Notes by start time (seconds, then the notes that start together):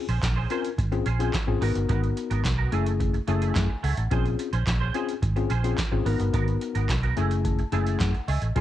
0.09 A#1 C#4 G#4 C5, closed hi-hat
0.23 A#1, muted clean electric guitar stroke, kick, snare, clap, closed hi-hat
0.36 C#4 G#4 C5
0.50 C4 C#4 F4 G#4 A#4 C5, closed hi-hat
0.64 muted clean electric guitar stroke, closed hi-hat
0.78 G#1, muted clean electric guitar stroke, kick, closed hi-hat
0.92 C4 C#4 F4 G#4, muted clean electric guitar stroke, closed hi-hat
1.06 A#1 C#4 G#4 C5, closed hi-hat
1.19 C4 C#4 F4 G#4 C5, closed hi-hat
1.33 kick, snare, clap, closed hi-hat
1.47 G#1 C4 C#4 F4 G#4, muted clean electric guitar stroke
1.61 G#1 B3 D#4 F#4 A#4, open hi-hat
1.75 G1, muted clean electric guitar stroke, closed hi-hat
1.89 G#1 B3 F#4 A#4, kick, closed hi-hat
2.03 muted clean electric guitar stroke, closed hi-hat
2.17 muted clean electric guitar stroke, closed hi-hat
2.30 G#1 B3 F#4 A#4, closed hi-hat
2.44 B1, muted clean electric guitar stroke, kick, snare, clap, closed hi-hat
2.58 B3 F#4 A#4
2.72 F#1 A3 C#4 E4 G#4, closed hi-hat
2.86 muted clean electric guitar stroke, closed hi-hat
3.00 muted clean electric guitar stroke, kick, closed hi-hat
3.14 muted clean electric guitar stroke, closed hi-hat
3.28 F#1 A3 C#4 E4 G#4 A5, closed hi-hat
3.41 A3 E4 G#4, closed hi-hat
3.56 F#2, kick, snare, clap, closed hi-hat
3.69 muted clean electric guitar stroke
3.83 C#2 A3 E4 G#4 F#5, open hi-hat
3.97 A1, muted clean electric guitar stroke, closed hi-hat
4.11 A#1 C4 C#4 F4 G#4 C5, kick, closed hi-hat
4.25 muted clean electric guitar stroke, closed hi-hat
4.39 muted clean electric guitar stroke, closed hi-hat
4.53 A#1 C#4 G#4 C5, closed hi-hat
4.67 A#1, muted clean electric guitar stroke, kick, snare, clap, closed hi-hat
4.80 C#4 G#4 C5
4.94 C4 C#4 F4 G#4 C5, closed hi-hat
5.08 muted clean electric guitar stroke, closed hi-hat
5.22 G#1, muted clean electric guitar stroke, kick, closed hi-hat
5.36 C4 C#4 F4 G#4, muted clean electric guitar stroke, closed hi-hat
5.50 A#1 C#4 G#4 C5, closed hi-hat
5.64 C4 C#4 F4 G#4 C5, closed hi-hat
5.78 kick, snare, clap, closed hi-hat
5.92 G#1 C4 C#4 F4 G#4, muted clean electric guitar stroke
6.05 G#1 B3 D#4 F#4 A#4, open hi-hat
6.20 G1, muted clean electric guitar stroke, closed hi-hat
6.33 G#1 B3 F#4 A#4, kick, closed hi-hat
6.47 muted clean electric guitar stroke, closed hi-hat
6.61 muted clean electric guitar stroke, closed hi-hat
6.75 G#1 B3 F#4 A#4, closed hi-hat
6.89 B1, muted clean electric guitar stroke, kick, snare, clap, closed hi-hat
7.03 B3 F#4 A#4, closed hi-hat
7.17 F#1 A3 C#4 E4 G#4 G#5, closed hi-hat
7.31 muted clean electric guitar stroke, closed hi-hat
7.45 A5, muted clean electric guitar stroke, kick, closed hi-hat
7.59 muted clean electric guitar stroke, closed hi-hat
7.72 F#1 A3 C#4 E4 G#4 G#5, closed hi-hat
7.86 A3 E4 G#4, closed hi-hat
8.00 F#2 F#5, kick, snare, clap, closed hi-hat
8.14 muted clean electric guitar stroke, closed hi-hat
8.28 C#2 A3 E4 G#4 D#5, open hi-hat
8.42 A1, muted clean electric guitar stroke, closed hi-hat
8.55 A#1 C4 C#4 F4 G#4 C5, kick, closed hi-hat